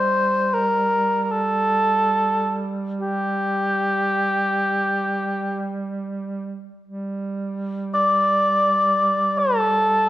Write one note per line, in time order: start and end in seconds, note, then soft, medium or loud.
0.00 6.67 G3 soft
0.00 0.55 C5 medium
0.53 1.23 A#4 medium
1.23 1.33 A#4 soft
1.32 2.68 A4 medium
3.01 5.78 G4 medium
6.84 10.09 G3 soft
7.94 9.40 D5 medium
9.39 10.09 A4 medium